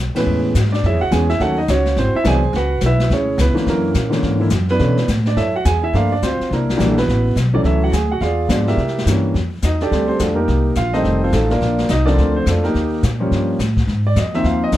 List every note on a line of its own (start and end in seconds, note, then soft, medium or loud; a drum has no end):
0.00 0.12 B1 medium
0.15 0.52 A2 medium
0.15 0.53 E3 soft
0.15 0.53 G#3 medium
0.15 0.53 B3 soft
0.15 0.53 C#4 medium
0.15 0.53 E4 medium
0.15 0.53 G#4 medium
0.15 0.53 B4 medium
0.15 muted upright bass stroke soft
0.15 snare medium
0.15 ride medium
0.26 0.54 E2 medium
0.26 brush sweep soft
0.55 0.82 G#2 medium
0.55 kick soft
0.55 snare medium
0.55 hi-hat pedal medium
0.65 snare soft
0.72 0.83 D4 medium
0.72 0.84 D5 medium
0.72 snare soft
0.83 0.94 F#2 medium
0.83 1.01 E4 medium
0.83 1.01 G#4 medium
0.83 1.01 C#5 medium
0.83 1.01 E5 medium
0.83 brush sweep soft
0.83 kick soft
0.83 snare soft
0.94 1.02 E2 medium
1.01 1.11 C#2 medium
1.01 1.11 F#4 medium
1.01 1.12 F#5 loud
1.11 1.39 E2 medium
1.11 1.27 E3 medium
1.11 1.28 G#3 medium
1.11 1.28 B3 medium
1.11 1.28 C#4 medium
1.11 1.29 G#4 medium
1.11 1.30 G#5 medium
1.11 kick soft
1.11 snare medium
1.11 hi-hat pedal soft
1.29 1.39 E4 medium
1.29 1.40 E5 medium
1.29 snare soft
1.40 1.67 D#2 medium
1.40 1.56 D#3 medium
1.40 1.56 F#3 medium
1.40 1.56 A3 medium
1.40 1.57 C#4 medium
1.40 1.57 F#4 medium
1.40 1.57 A4 medium
1.40 1.57 C#5 medium
1.40 1.57 F#5 medium
1.40 brush sweep soft
1.40 kick soft
1.40 snare soft
1.58 1.68 D#4 medium
1.58 1.69 D#5 medium
1.68 1.96 C#2 medium
1.68 1.96 C#4 medium
1.68 1.96 F#4 medium
1.68 1.96 C#5 medium
1.68 kick soft
1.68 snare medium
1.68 hi-hat pedal medium
1.85 snare soft
1.96 2.13 G#1 medium
1.96 2.14 C4 medium
1.96 2.14 E4 medium
1.96 2.14 F#4 medium
1.96 2.16 C5 medium
1.96 brush sweep soft
1.96 kick soft
1.96 snare soft
2.14 2.25 E4 medium
2.14 2.26 E5 medium
2.14 muted upright bass stroke soft
2.24 2.52 C2 medium
2.24 2.40 E3 medium
2.24 2.40 F#3 medium
2.24 2.41 B3 medium
2.24 2.41 D4 medium
2.24 2.52 G#4 medium
2.24 2.53 C5 medium
2.24 2.53 G#5 loud
2.24 kick soft
2.24 snare medium
2.24 hi-hat pedal soft
2.53 2.81 C#2 medium
2.53 2.81 F#4 medium
2.53 2.81 B4 medium
2.53 2.81 F#5 medium
2.53 brush sweep soft
2.53 kick soft
2.53 snare soft
2.81 3.09 B1 medium
2.81 kick soft
2.81 snare medium
2.81 hi-hat pedal medium
2.85 3.11 E4 medium
2.85 3.10 B4 medium
2.85 3.11 E5 medium
3.00 snare soft
3.10 3.37 D2 medium
3.10 3.38 C#4 medium
3.10 3.38 E4 medium
3.10 3.38 G#4 medium
3.10 3.38 C#5 medium
3.10 brush sweep soft
3.10 kick soft
3.10 snare soft
3.38 3.55 C#2 medium
3.38 3.66 B3 medium
3.38 3.66 E4 medium
3.38 3.69 B4 medium
3.38 kick soft
3.38 snare medium
3.38 hi-hat pedal medium
3.53 3.92 D3 medium
3.53 3.93 E3 medium
3.53 3.68 A#3 medium
3.53 3.68 C#4 medium
3.53 muted upright bass stroke soft
3.53 snare soft
3.67 3.94 F#2 medium
3.67 4.09 A#3 medium
3.67 4.09 C#4 medium
3.67 4.40 E4 medium
3.67 4.49 A#4 medium
3.67 brush sweep soft
3.67 kick soft
3.67 snare soft
3.94 4.22 A#2 medium
3.94 kick soft
3.94 snare medium
3.94 hi-hat pedal medium
4.10 4.38 D3 medium
4.10 4.38 E3 medium
4.10 4.38 A#3 medium
4.10 4.38 C#4 medium
4.10 snare soft
4.22 4.50 G#2 medium
4.22 brush sweep medium
4.22 kick soft
4.22 snare soft
4.40 4.50 D3 medium
4.40 4.50 E3 medium
4.40 4.50 A#3 medium
4.40 4.51 E4 medium
4.50 4.79 F#2 medium
4.50 kick soft
4.50 snare medium
4.50 hi-hat pedal medium
4.69 5.07 B3 medium
4.69 5.07 D4 medium
4.69 5.07 E4 medium
4.69 5.07 B4 loud
4.69 snare soft
4.79 5.07 B2 medium
4.79 4.96 D3 medium
4.79 4.96 E3 medium
4.79 4.96 A3 medium
4.79 4.96 C#4 medium
4.79 brush sweep soft
4.79 kick soft
4.79 snare soft
4.97 snare medium
5.08 5.36 A2 medium
5.08 kick soft
5.08 snare medium
5.08 hi-hat pedal medium
5.25 5.37 D4 medium
5.25 5.38 D5 medium
5.25 snare soft
5.36 5.64 F#2 medium
5.36 5.53 E4 medium
5.36 5.53 A4 medium
5.36 5.53 C#5 medium
5.36 5.54 E5 medium
5.36 brush sweep soft
5.36 kick soft
5.36 snare soft
5.55 5.65 F#4 medium
5.55 5.67 F#5 medium
5.65 5.93 E2 loud
5.65 5.82 G#4 medium
5.65 5.84 G#5 medium
5.65 kick soft
5.65 snare medium
5.65 hi-hat pedal medium
5.83 5.93 E4 medium
5.83 5.95 E5 medium
5.93 6.21 G2 medium
5.93 6.10 F3 medium
5.93 6.10 A3 medium
5.93 6.10 A#3 soft
5.93 6.10 D4 medium
5.93 6.11 F4 medium
5.93 6.11 A#4 medium
5.93 6.11 D5 medium
5.93 6.13 F5 medium
5.93 brush sweep soft
5.93 kick soft
5.93 snare soft
6.12 6.22 D4 medium
6.12 6.23 D5 medium
6.22 6.39 D2 medium
6.22 6.49 C4 medium
6.22 6.49 F4 medium
6.22 6.49 C5 medium
6.22 kick soft
6.22 snare medium
6.22 hi-hat pedal medium
6.40 muted upright bass stroke soft
6.40 snare soft
6.51 6.78 C2 medium
6.51 6.76 A#3 soft
6.51 6.77 D4 medium
6.51 6.87 E4 medium
6.51 6.90 A#4 medium
6.51 brush sweep soft
6.51 kick soft
6.51 snare soft
6.69 snare soft
6.77 7.06 A#1 medium
6.77 6.94 E3 medium
6.77 6.94 G3 medium
6.77 6.94 A#3 medium
6.77 6.95 D4 medium
6.77 kick soft
6.77 snare medium
6.77 hi-hat pedal medium
6.89 6.97 A4 medium
6.97 7.34 B3 medium
6.97 7.34 E4 medium
6.97 7.34 F#4 medium
6.97 7.34 B4 medium
6.97 snare medium
7.07 7.35 A1 medium
7.07 brush sweep soft
7.07 kick soft
7.07 snare soft
7.36 7.63 B1 medium
7.36 kick soft
7.36 snare medium
7.36 hi-hat pedal medium
7.54 7.90 E3 medium
7.54 7.91 F#3 medium
7.54 7.91 A3 medium
7.54 7.91 C#4 medium
7.54 7.59 D4 medium
7.54 7.59 D5 medium
7.64 7.91 C#2 medium
7.64 7.81 E4 medium
7.64 7.82 A4 medium
7.64 7.82 C#5 medium
7.64 7.81 E5 medium
7.64 brush sweep soft
7.64 kick soft
7.64 snare soft
7.84 7.93 F#4 medium
7.84 7.93 F#5 medium
7.92 8.20 D2 medium
7.92 8.10 G#4 medium
7.92 8.11 G#5 medium
7.92 kick soft
7.92 snare medium
7.92 hi-hat pedal medium
8.11 8.21 F#4 medium
8.11 8.21 F#5 medium
8.20 8.48 E2 medium
8.20 8.48 F4 medium
8.20 8.48 G#4 medium
8.20 8.48 D5 medium
8.20 8.47 F5 medium
8.20 brush sweep soft
8.20 kick soft
8.20 snare soft
8.48 8.77 G#2 medium
8.48 8.77 F3 medium
8.48 8.77 G#3 medium
8.48 8.78 B3 medium
8.48 8.78 D4 medium
8.48 kick soft
8.48 snare medium
8.48 hi-hat pedal medium
8.67 9.04 E4 medium
8.67 9.04 G4 medium
8.67 9.04 A#4 medium
8.67 9.04 E5 medium
8.67 snare soft
8.77 9.05 C3 medium
8.77 brush sweep soft
8.77 kick soft
8.77 snare soft
8.88 snare soft
8.98 snare soft
9.06 9.33 G2 medium
9.06 9.35 E3 medium
9.06 9.35 G3 soft
9.06 9.35 A#3 medium
9.06 9.35 C#4 medium
9.06 kick soft
9.06 snare medium
9.06 hi-hat pedal medium
9.34 9.62 F2 medium
9.34 brush sweep soft
9.34 kick soft
9.34 snare soft
9.62 9.90 E2 medium
9.62 9.81 D#4 medium
9.62 9.81 D#5 medium
9.62 kick soft
9.62 snare medium
9.62 hi-hat pedal medium
9.80 10.07 D4 medium
9.80 10.07 G4 medium
9.80 10.07 A4 medium
9.80 10.08 D5 medium
9.80 snare soft
9.91 10.19 D2 medium
9.91 10.34 D3 medium
9.91 10.34 G3 soft
9.91 10.18 A3 medium
9.91 10.07 C4 medium
9.91 brush sweep soft
9.91 kick soft
9.91 snare soft
10.08 10.19 C4 medium
10.08 10.19 G4 medium
10.08 10.18 A4 medium
10.08 10.19 C5 medium
10.15 10.17 G#4 soft
10.19 10.47 F2 medium
10.19 10.37 A3 medium
10.19 10.37 D4 soft
10.19 10.37 F4 soft
10.19 10.37 A4 medium
10.19 kick soft
10.19 snare medium
10.19 hi-hat pedal medium
10.35 10.72 A#3 medium
10.35 10.73 D#4 medium
10.35 10.73 G4 medium
10.35 10.73 A#4 medium
10.48 10.75 C2 medium
10.48 brush sweep soft
10.48 kick soft
10.48 snare soft
10.75 11.04 A#1 medium
10.75 10.94 F4 medium
10.75 10.94 F5 loud
10.75 kick soft
10.75 snare medium
10.75 hi-hat pedal medium
10.93 11.31 D#3 medium
10.93 11.31 G3 medium
10.93 11.31 A3 medium
10.93 11.22 C4 medium
10.93 11.20 D#4 medium
10.93 11.20 A4 medium
10.93 11.20 C5 medium
10.93 11.20 D#5 medium
10.93 snare soft
11.04 11.32 F1 medium
11.04 brush sweep soft
11.04 kick soft
11.04 snare soft
11.24 11.33 C4 medium
11.24 11.32 F4 medium
11.24 11.32 A4 medium
11.24 11.33 C5 medium
11.32 11.60 A1 loud
11.32 11.50 A3 medium
11.32 11.50 D#4 medium
11.32 11.50 F4 medium
11.32 11.50 A4 medium
11.32 kick soft
11.32 snare medium
11.32 hi-hat pedal medium
11.50 11.87 A#3 medium
11.50 11.87 D4 medium
11.50 11.88 F4 medium
11.50 11.87 A#4 medium
11.50 snare soft
11.61 11.88 A#1 medium
11.61 brush sweep soft
11.61 kick soft
11.61 snare soft
11.79 snare soft
11.88 12.17 C2 medium
11.88 12.07 D#4 medium
11.88 12.07 D#5 medium
11.88 kick soft
11.88 snare medium
11.88 hi-hat pedal medium
12.06 12.44 D3 medium
12.06 12.44 F3 medium
12.06 12.44 A3 medium
12.06 12.35 C4 medium
12.06 12.33 D4 medium
12.06 12.33 A4 medium
12.06 12.33 A#4 medium
12.06 12.33 D5 loud
12.06 snare soft
12.18 12.45 D2 medium
12.18 brush sweep soft
12.18 kick soft
12.18 snare soft
12.36 12.47 C4 medium
12.36 12.46 C5 medium
12.46 12.74 F2 medium
12.46 12.65 A3 medium
12.46 12.65 D4 medium
12.46 12.65 F4 medium
12.46 12.64 A4 medium
12.46 kick soft
12.46 snare medium
12.46 hi-hat pedal medium
12.64 13.01 A#3 medium
12.64 13.01 D#4 medium
12.64 13.01 G4 medium
12.64 13.00 A#4 medium
12.64 snare soft
12.74 13.02 D#2 medium
12.74 brush sweep soft
12.74 kick soft
12.74 snare soft
13.03 13.30 A#2 medium
13.03 kick soft
13.03 snare medium
13.03 hi-hat pedal medium
13.20 13.57 F3 medium
13.20 13.58 G3 medium
13.20 13.58 A#3 medium
13.20 13.58 C#4 medium
13.31 13.58 G2 medium
13.31 brush sweep soft
13.31 kick soft
13.31 snare soft
13.59 13.87 A2 medium
13.59 kick soft
13.59 snare medium
13.59 hi-hat pedal medium
13.77 kick medium
13.77 snare soft
13.87 14.15 G#2 medium
13.87 brush sweep soft
13.87 kick soft
13.87 snare soft
14.07 14.17 D5 medium
14.16 14.43 F2 medium
14.16 14.34 D#5 medium
14.16 kick soft
14.16 snare medium
14.16 hi-hat pedal medium
14.34 14.70 D#3 medium
14.34 14.71 F3 medium
14.34 14.71 A#3 medium
14.34 14.72 C4 medium
14.34 14.45 E5 medium
14.34 snare soft
14.43 14.72 D#2 medium
14.43 14.62 F5 medium
14.43 brush sweep soft
14.43 kick soft
14.43 snare soft
14.64 14.73 D#5 medium
14.72 14.77 D2 medium
14.72 14.77 D#3 medium
14.72 14.77 F3 medium
14.72 14.77 A#3 medium
14.72 14.77 D4 medium
14.72 kick soft
14.72 snare medium
14.72 hi-hat pedal soft